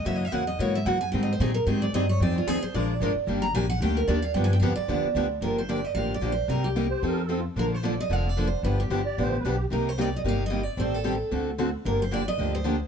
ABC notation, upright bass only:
X:1
M:4/4
L:1/8
Q:"Swing" 1/4=224
K:Gphr
V:1 name="Upright bass" clef=bass
^F,,2 =E,,2 ^G,,2 F,,2 | A,,2 B,,2 A,,2 G,,2 | F,,2 E,, z B,,,2 A,,, z | G,,,2 B,,,2 D,,2 E,,2 |
G,,2 F,, z E,, z D,,2 | [K:Gm] G,,,4 A,,,2 B,,,2 | C,,4 F,,4 | B,,,4 F,,,4 |
G,,,2 G,,,2 A,,,2 =B,,,2 | C,,4 G,,,4 | A,,,4 D,,4 | G,,,4 D,,4 |]